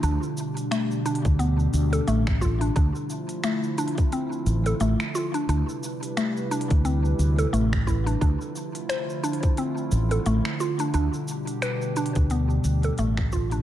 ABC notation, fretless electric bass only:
X:1
M:4/4
L:1/16
Q:"Swing 16ths" 1/4=88
K:Ddor
V:1 name="Fretless electric bass" clef=bass
D,, z6 D,,2 z D,, z A,,,3 z | D,, z8 z A,,, z A,,, z3 | D,, z6 D,,2 z D,, z A,,,3 z | D,, z8 z A,,, z A,,, z3 |
D,, z6 D,,2 z D,, z A,,,3 z |]